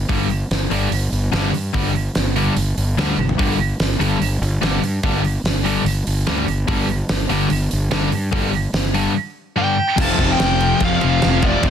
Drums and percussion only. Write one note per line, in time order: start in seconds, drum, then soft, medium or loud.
0.09 kick loud
0.09 open hi-hat medium
0.30 open hi-hat soft
0.51 snare loud
0.51 open hi-hat medium
0.71 open hi-hat medium
0.92 open hi-hat medium
1.13 open hi-hat medium
1.33 snare loud
1.33 open hi-hat medium
1.54 open hi-hat medium
1.74 kick loud
1.74 open hi-hat medium
1.96 open hi-hat soft
2.15 snare loud
2.15 open hi-hat medium
2.36 open hi-hat medium
2.57 open hi-hat medium
2.78 open hi-hat medium
2.99 snare medium
2.99 open hi-hat medium
3.19 high tom medium
3.29 floor tom medium
3.39 kick loud
3.39 open hi-hat medium
3.60 open hi-hat soft
3.80 snare loud
3.80 open hi-hat medium
3.91 snare soft
4.01 open hi-hat medium
4.22 open hi-hat medium
4.43 open hi-hat medium
4.63 snare loud
4.63 open hi-hat medium
4.83 open hi-hat medium
5.03 kick loud
5.03 open hi-hat medium
5.24 open hi-hat soft
5.45 snare loud
5.45 open hi-hat medium
5.66 open hi-hat medium
5.86 open hi-hat medium
6.07 open hi-hat medium
6.27 snare loud
6.27 open hi-hat medium
6.48 open hi-hat medium
6.68 kick loud
6.68 open hi-hat medium
6.89 open hi-hat soft
7.09 snare loud
7.09 open hi-hat medium
7.30 open hi-hat medium
7.50 open hi-hat medium
7.71 open hi-hat medium
7.91 snare loud
7.91 open hi-hat medium
8.12 open hi-hat medium
8.32 kick loud
8.32 open hi-hat medium
8.53 open hi-hat soft
8.74 snare loud
8.74 open hi-hat medium
8.85 snare soft
8.94 open hi-hat medium
9.98 kick loud
9.98 crash loud
9.98 crash medium
10.09 snare soft
10.19 kick medium
10.19 snare soft
10.19 crash medium
10.40 snare loud
10.40 crash medium
10.61 crash medium
10.80 kick medium
10.80 crash medium
11.01 crash medium
11.22 snare loud
11.22 crash medium
11.42 kick medium
11.42 crash medium
11.63 kick loud
11.63 crash medium